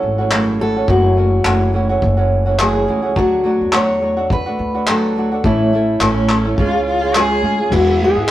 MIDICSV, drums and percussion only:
0, 0, Header, 1, 2, 480
1, 0, Start_track
1, 0, Key_signature, 3, "minor"
1, 0, Tempo, 569801
1, 744, Time_signature, 4, 2, 24, 8
1, 6998, End_track
2, 0, Start_track
2, 0, Title_t, "Drums"
2, 263, Note_on_c, 9, 39, 102
2, 347, Note_off_c, 9, 39, 0
2, 742, Note_on_c, 9, 36, 107
2, 827, Note_off_c, 9, 36, 0
2, 1221, Note_on_c, 9, 39, 100
2, 1306, Note_off_c, 9, 39, 0
2, 1703, Note_on_c, 9, 36, 92
2, 1787, Note_off_c, 9, 36, 0
2, 2184, Note_on_c, 9, 39, 107
2, 2268, Note_off_c, 9, 39, 0
2, 2664, Note_on_c, 9, 36, 111
2, 2748, Note_off_c, 9, 36, 0
2, 3139, Note_on_c, 9, 39, 100
2, 3223, Note_off_c, 9, 39, 0
2, 3624, Note_on_c, 9, 36, 97
2, 3709, Note_off_c, 9, 36, 0
2, 4105, Note_on_c, 9, 39, 111
2, 4189, Note_off_c, 9, 39, 0
2, 4584, Note_on_c, 9, 36, 113
2, 4668, Note_off_c, 9, 36, 0
2, 5061, Note_on_c, 9, 39, 96
2, 5145, Note_off_c, 9, 39, 0
2, 5300, Note_on_c, 9, 39, 86
2, 5385, Note_off_c, 9, 39, 0
2, 5542, Note_on_c, 9, 36, 87
2, 5627, Note_off_c, 9, 36, 0
2, 6023, Note_on_c, 9, 39, 109
2, 6107, Note_off_c, 9, 39, 0
2, 6503, Note_on_c, 9, 36, 105
2, 6504, Note_on_c, 9, 49, 92
2, 6587, Note_off_c, 9, 36, 0
2, 6588, Note_off_c, 9, 49, 0
2, 6998, End_track
0, 0, End_of_file